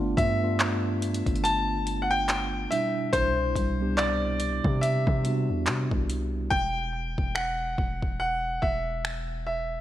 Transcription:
Already playing: G1 A3 B3 D4 F4
0.17 G2 E5, kick, closed hi-hat
0.42 A3 B3 D4 F4
0.60 clap, closed hi-hat
1.02 closed hi-hat
1.14 closed hi-hat
1.26 G1, kick, closed hi-hat
1.36 closed hi-hat
1.44 A5, closed hi-hat
1.87 closed hi-hat
2.02 F#5
2.11 G5
2.29 clap, closed hi-hat
2.71 B2 G3 D4 E4 E5, closed hi-hat
3.13 C2 C5, kick, closed hi-hat
3.56 C2, kick, closed hi-hat
3.80 G3 B3 D4 G4
3.97 D5, clap, closed hi-hat
4.40 closed hi-hat
4.64 C3, kick
4.81 E5, closed hi-hat
5.07 C3, kick
5.25 G3 B3 D4 F#4, closed hi-hat
5.50 E2
5.66 C3, clap, closed hi-hat
5.91 C2, kick
6.10 closed hi-hat
6.50 E1 G5, kick
7.18 E1, kick
7.35 F#5, finger snap
7.78 E1, kick
8.02 kick
8.20 F#5
8.62 E1 E5, kick
9.05 finger snap
9.47 E5

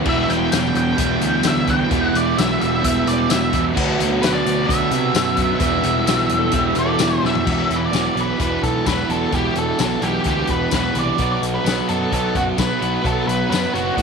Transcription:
Already playing: B3
0.05 E1 E2 B2 E3 G3 B3 E4, kick, crash
0.09 E5
0.28 E1 G5, closed hi-hat
0.52 E1 G5, snare, closed hi-hat, tambourine
0.75 E1 G5, closed hi-hat
0.95 E1 E2 B2 E3 G3 B3 E4, kick, closed hi-hat
1.00 E3
1.21 D2, closed hi-hat
1.43 D2 E5, snare, closed hi-hat, tambourine
1.67 E2 B2 E3 G5, kick, closed hi-hat
1.88 E1 E2 E3 G3 B3 E4, kick, closed hi-hat
1.92 B2 E3
2.05 F#5
2.14 E1 D5, closed hi-hat
2.38 B1 E5, snare, closed hi-hat, tambourine
2.61 E1 E5, closed hi-hat
2.81 E1 E2 B2 E3 G3 B3 E4 E5, kick, closed hi-hat
3.07 E1 D5, closed hi-hat
3.30 E1 E5, snare, closed hi-hat, tambourine
3.52 E2 B2 E3, kick, closed hi-hat
3.75 D2 B2 D3 F#3 B3 F#4, kick, crash
4.00 D2, closed hi-hat
4.22 D2 B4, snare, closed hi-hat, tambourine
4.33 D5
4.46 D2, closed hi-hat
4.66 D2 B2 D3 F#3 B3 F#4 E5, kick, closed hi-hat
4.91 C3, closed hi-hat
5.14 F#2, snare, closed hi-hat, tambourine
5.36 B2 F#3 B3, kick, closed hi-hat
5.55 E3 E5
5.59 E1 E2 B2 G3 B3 E4, kick, closed hi-hat
5.63 E3
5.83 E1, closed hi-hat
6.07 B1, snare, closed hi-hat, tambourine
6.29 E1, closed hi-hat
6.39 A4
6.52 E1 E2 B2 E3 G3 B3 E4 G4, kick, closed hi-hat
6.70 E4
6.75 E1 D5, closed hi-hat
6.85 A4
6.99 E1 E4, snare, closed hi-hat, tambourine
7.21 E1 B2 E3
7.25 E2 E5, snare
7.35 floor tom
7.46 E1 E2 B2 E3, kick, crash
7.70 E1, closed hi-hat
7.76 B4
7.86 D5
7.92 E1 E2 B2 E3, snare, closed hi-hat, tambourine
8.15 B1 E2 B2 E3, closed hi-hat
8.21 B4
8.39 E1 E2 B2 E3 B4, kick, closed hi-hat
8.63 B1 A4, kick, closed hi-hat
8.85 E1 E2 B2 E3 B4, kick, snare, closed hi-hat, tambourine
9.09 E1 E2 B2 E3 A4, closed hi-hat
9.32 E1 E2 B2 E3 G4, kick, closed hi-hat
9.55 E1 A4, closed hi-hat
9.78 B1 E2 B2 E3 A4, snare, closed hi-hat, tambourine
10.02 B1 E2 B2 E3 G4, closed hi-hat
10.24 D2 E2 B2 E3, kick, closed hi-hat
10.28 G4
10.47 E1 B4, kick, closed hi-hat
10.71 E1 E2 B2 E3 B4, kick, snare, closed hi-hat, tambourine
10.95 C2 E2 B2 E3, closed hi-hat
10.99 D5
11.18 B1 B2 F#3 B3, kick, closed hi-hat
11.32 D5
11.42 B1, closed hi-hat
11.55 B4
11.65 B1 B2 F#3 B3, snare, closed hi-hat, tambourine
11.88 F#2 B2 F#3 B3 A4, closed hi-hat
12.11 B1 B2 F#3 B3 A4, kick, closed hi-hat
12.35 F#1 F#4, kick, closed hi-hat
12.57 B1 B2 F#3 B3 B4, kick, snare, closed hi-hat, tambourine
12.80 B1 B2 F#3 B3, closed hi-hat
13.04 B1 B2 F#3 B3 A4, kick, closed hi-hat
13.27 B1 B4, closed hi-hat
13.50 F#2 B2 F#3 B3 B4, snare, closed hi-hat, tambourine
13.73 F#1 B2 F#3 B3 F#4, closed hi-hat
13.95 A2 B2 F#3 B3 F#4, kick, closed hi-hat

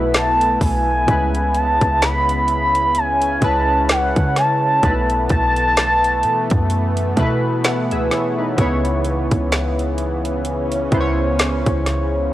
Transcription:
Already playing: B1 B2 A3 B3 E4 B4
0.14 A5, snare, closed hi-hat
0.41 closed hi-hat
0.61 B1 G#5, kick, open hi-hat
1.06 C#2 C#3 G#3 B3 E4 B4, kick, closed hi-hat
1.35 closed hi-hat
1.55 A5, closed hi-hat
1.81 C#2, kick, closed hi-hat
2.02 B5, snare, closed hi-hat
2.29 closed hi-hat
2.48 B5, closed hi-hat
2.75 closed hi-hat
2.95 C#4 G#5, closed hi-hat
3.22 closed hi-hat
3.41 C#2 C#3 G#3 E4 B4 A5, kick, closed hi-hat
3.89 F#5, snare, closed hi-hat
4.16 C#3, kick, closed hi-hat
4.36 A5, snare, closed hi-hat
4.82 B1 B2 E3 A3 B3 D#4 B4, kick, closed hi-hat
4.90 E4
5.10 closed hi-hat
5.29 B1 A5, kick, closed hi-hat
5.56 closed hi-hat
5.77 snare, closed hi-hat
6.04 closed hi-hat
6.23 B2, closed hi-hat
6.50 F#2, kick, closed hi-hat
6.70 closed hi-hat
6.97 closed hi-hat
7.16 B2 A3 E4 B4, kick, closed hi-hat
7.64 A4 F#5, snare, closed hi-hat
7.91 C#2 G#4 E5, closed hi-hat
8.11 E4 C#5, snare, closed hi-hat
8.38 D#4 B4
8.56 C#2 C#3 B3 E4 C#5, kick, closed hi-hat
8.85 closed hi-hat
9.05 closed hi-hat
9.31 C#2, kick, closed hi-hat
9.52 snare, closed hi-hat
9.79 closed hi-hat
9.98 closed hi-hat
10.25 closed hi-hat
10.45 C#4, closed hi-hat
10.72 closed hi-hat
10.91 C#2 C#3 B3 E4 C5, kick, closed hi-hat
11.01 C#5
11.39 snare, closed hi-hat
11.66 C#2, kick, closed hi-hat
11.86 snare, closed hi-hat

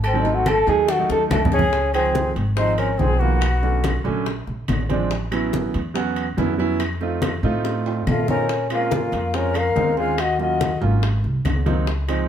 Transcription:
Already playing: G#1
0.04 C4, cowbell, high conga, low agogo, claves
0.13 D#3 F#3 A3 C4
0.20 D#3 D#4
0.25 F#3 A3 C4, cowbell, high conga
0.34 F#4
0.46 A4, cowbell, high conga, low timbale, low agogo, claves
0.67 D#2 D#3 F#3 A3 D#4 G#4, cowbell, high conga
0.88 F#4, cowbell, high bongo, high conga, low agogo
0.98 D#3 F#3 A3 D#4
1.09 D#2 A4, high bongo, high conga
1.30 C#2 A3 F#4, cowbell, low bongo, high conga, low timbale, low agogo, claves
1.45 low conga
1.52 C#4 G#4, cowbell, low bongo
1.59 low conga
1.73 high bongo, high conga, high timbale
1.93 D#3 F3 G#3 C4 G#4, high bongo, high conga, high timbale, claves
2.15 high bongo, high conga, low timbale
2.36 G#1, high conga, high timbale
2.56 D#3 F3 G#3 C4 D#4 C5, high bongo, high conga, high timbale
2.77 C#4 A#4, high bongo, high conga, high timbale, claves
2.98 B1 D#3 F3 G#3 C4 G#4, high bongo, low bongo, high conga, low timbale
3.19 D#3 F3 G#3 A#3 B3 F#4, high bongo, high conga
3.41 high bongo, high conga, high timbale, claves
3.62 D3 F#3 A3 C#4, high bongo, high conga
3.84 high bongo, high conga, high timbale, low timbale, claves
4.04 A#1 D3 F#3 A3 C#4, high conga
4.26 high bongo, high conga, high timbale
4.47 A#1, high bongo, high conga
4.68 A1, high bongo, low bongo, high conga, high timbale, low timbale, claves
4.89 F3 G#3 C4 D4, high bongo, high conga, high timbale
5.11 high bongo, high conga, high timbale
5.31 F#3 B3 C#4 E4, high bongo, high conga, high timbale, claves
5.53 high bongo, high conga, low timbale
5.74 E2, high conga, high timbale
5.94 F#3 B3 C#4 F#4, high bongo, high conga, high timbale
6.16 high bongo, high conga, high timbale, claves
6.37 F2 F#3 B3 C#4 E4, high bongo, low bongo, high conga, low timbale
6.58 F#3 B3 C#4 E4, high bongo, high conga
6.80 high bongo, high conga, high timbale, claves
7.01 A3 C4 D#4 F4, high bongo, high conga
7.22 high bongo, high conga, high timbale, low timbale, claves
7.43 A2 A3 C4 D#4 F4, high conga
7.65 high bongo, high conga, high timbale
7.86 high conga, high timbale
8.07 A#2 A3 F4, low bongo, high conga, low timbale, claves
8.28 A3 C4 C#4 D#4 F4 A#4, low bongo, high conga, low timbale
8.49 high bongo, high conga, high timbale
8.70 G#3 A#3 C4 C#4 F4, high bongo, high conga, high timbale, claves
8.91 high bongo, high conga, low timbale
9.12 F2, high conga, high timbale
9.33 G#3 C4 C#4 F4 A#4, high bongo, high conga, high timbale
9.54 A#4 F5, high bongo, high conga, high timbale, claves
9.76 D#2 G#3 C4 C#4 D#4, high bongo, low bongo, high conga, low timbale
9.97 G#3 C4 C#4 F4 G#4 F5, high bongo, high conga
10.18 F#4 D#5, high bongo, high conga, high timbale, claves
10.39 F#3 A#3 C#4 F4 F#4 D#5, high bongo, high conga
10.61 high bongo, high conga, high timbale, low timbale, claves
10.81 G#1 F#3 A#3 C#4 F4, high conga
11.03 high bongo, high conga, high timbale
11.24 C2, high bongo, high conga
11.45 C#2, high bongo, low bongo, high conga, high timbale, low timbale, claves
11.66 F#3 A#3 C4 D#4, high bongo, high conga, high timbale
11.87 high bongo, high conga, high timbale
12.08 F3 G#3 C4 D#4, high bongo, high conga, high timbale, claves

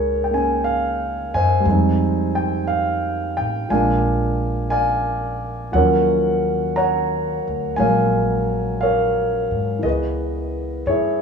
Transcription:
Already playing: C#2 G#3 A#3 C#4 D#4 G#4 A#4 C#5
0.24 G5
0.31 A#3 C#4 G#5
0.64 F5
1.34 F#2 C5 D#5 G#5
1.60 G3 G#3
1.65 F2 C4
1.71 D#4
2.35 G5
2.67 F5
3.37 A1 G5
3.69 A#1 F3 G#3 A#3 D5 F5 G#5
3.73 D4
4.70 D5 F5 G#5
5.72 D#2 F3 F#3 A#3 A#4 C#5 F#5
5.77 C#4
6.76 C#5 F#5 A#5
7.48 D2
7.76 A#1 F#3 G#3 C#5 F5 G#5
7.82 A#3
8.81 A#4 C#5 F5
9.51 G#2
9.79 C#2 E3
9.83 B3 G#4 B4 D#5
9.90 D#5
10.86 G2 E4 G#4 C#5

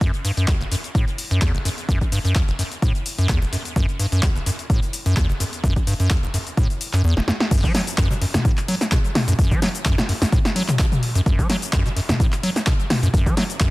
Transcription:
0.01 F#2, kick, closed hi-hat, cabasa
0.14 closed hi-hat, cabasa
0.25 G2, open hi-hat, cabasa
0.37 F#2, closed hi-hat, cabasa
0.48 E2, kick, clap, closed hi-hat, cabasa
0.61 F#1, closed hi-hat, cabasa
0.72 F#2, open hi-hat, cabasa
0.84 closed hi-hat, cabasa
0.95 A2, kick, closed hi-hat, cabasa
1.08 closed hi-hat, cabasa
1.18 open hi-hat, cabasa
1.31 F#2, closed hi-hat, cabasa
1.41 E2, kick, clap, closed hi-hat, cabasa
1.54 F#1, closed hi-hat, cabasa
1.65 F#2, open hi-hat, cabasa
1.78 closed hi-hat, cabasa
1.89 F#2, kick, closed hi-hat, cabasa
2.01 kick, closed hi-hat, cabasa
2.12 G2, open hi-hat, cabasa
2.25 F#2, closed hi-hat, cabasa
2.35 kick, clap, closed hi-hat, cabasa
2.48 F#1, closed hi-hat, cabasa
2.59 F#2, open hi-hat, cabasa
2.72 closed hi-hat, cabasa
2.82 A2, kick, closed hi-hat, cabasa
2.95 closed hi-hat, cabasa
3.06 open hi-hat, cabasa
3.18 F#2, closed hi-hat, cabasa
3.29 E2, kick, clap, closed hi-hat, cabasa
3.42 F#1, closed hi-hat, cabasa
3.53 F#2, open hi-hat, cabasa
3.65 closed hi-hat, cabasa
3.76 F#2, kick, closed hi-hat, cabasa
3.89 closed hi-hat, cabasa
3.99 G2, open hi-hat, cabasa
4.12 F#2, closed hi-hat, cabasa
4.23 E2, kick, clap, closed hi-hat, cabasa
4.36 F#1, closed hi-hat, cabasa
4.46 F#2, open hi-hat, cabasa
4.59 closed hi-hat, cabasa
4.70 A2, kick, closed hi-hat, cabasa
4.82 closed hi-hat, cabasa
4.93 open hi-hat, cabasa
5.06 F#2, closed hi-hat, cabasa
5.16 E2, kick, clap, closed hi-hat, cabasa
5.29 F#1, closed hi-hat, cabasa
5.40 F#2, open hi-hat, cabasa
5.53 closed hi-hat, cabasa
5.64 F#2, kick, closed hi-hat, cabasa
5.76 kick, closed hi-hat, cabasa
5.87 G2, open hi-hat, cabasa
6.00 F#2, closed hi-hat, cabasa
6.10 kick, clap, closed hi-hat, cabasa
6.23 F#1, closed hi-hat, cabasa
6.34 F#2, open hi-hat, cabasa
6.47 closed hi-hat, cabasa
6.57 A2, kick, closed hi-hat, cabasa
6.70 closed hi-hat, cabasa
6.81 open hi-hat, cabasa
6.93 F#2, clap, closed hi-hat, cabasa
7.04 E2
7.17 F#1, snare
7.28 F#2, snare
7.40 snare
7.51 F#2, kick, closed hi-hat, crash, cabasa
7.64 F#3, kick, closed hi-hat, cabasa
7.75 F#3, snare, open hi-hat
7.87 closed hi-hat, cabasa
7.98 F#2, kick, clap, closed hi-hat, cabasa
8.11 B2, closed hi-hat, cabasa
8.21 F#2, open hi-hat
8.34 F#2, snare, mid tom, cabasa
8.45 A2, kick, closed hi-hat, cabasa
8.57 clap, closed hi-hat, cabasa
8.68 F#3, open hi-hat
8.81 snare, closed hi-hat, cabasa
8.92 B2, kick, clap, closed hi-hat, cabasa
9.04 closed hi-hat, cabasa
9.15 snare, open hi-hat, mid tom
9.28 F#2, closed hi-hat, cabasa
9.39 F#2, kick, closed hi-hat, cabasa
9.51 F#3, kick, closed hi-hat, cabasa
9.62 F#3, snare, open hi-hat
9.75 closed hi-hat, cabasa
9.85 F#2, kick, clap, closed hi-hat, cabasa
9.98 B2, snare, closed hi-hat, cabasa
10.09 F#2, open hi-hat
10.22 F#2, snare, cabasa
10.32 A2, kick, closed hi-hat, cabasa
10.45 snare, closed hi-hat, cabasa
10.56 F#3, open hi-hat
10.68 clap, closed hi-hat, mid tom, cabasa
10.79 B2, kick, clap, closed hi-hat, cabasa
10.92 closed hi-hat, mid tom, cabasa
11.03 open hi-hat
11.15 F#2, closed hi-hat, cabasa
11.26 F#2, kick, closed hi-hat, cabasa
11.39 F#3, kick, closed hi-hat, cabasa
11.50 F#3, snare, open hi-hat
11.62 closed hi-hat, cabasa
11.73 F#2, kick, clap, closed hi-hat, cabasa
11.86 B2, closed hi-hat, cabasa
11.96 F#2, open hi-hat
12.09 F#2, snare, closed hi-hat, mid tom, cabasa
12.20 A2, kick, closed hi-hat, cabasa
12.32 clap, closed hi-hat, cabasa
12.43 F#3, open hi-hat
12.56 snare, closed hi-hat, cabasa
12.66 B2, kick, clap, closed hi-hat, cabasa
12.79 closed hi-hat, cabasa
12.90 snare, open hi-hat, mid tom
13.03 F#2, closed hi-hat, cabasa
13.13 F#2, kick, closed hi-hat, cabasa
13.26 F#3, kick, closed hi-hat, cabasa
13.37 F#3, snare, open hi-hat
13.50 closed hi-hat, cabasa
13.60 F#2, kick, clap, closed hi-hat, cabasa

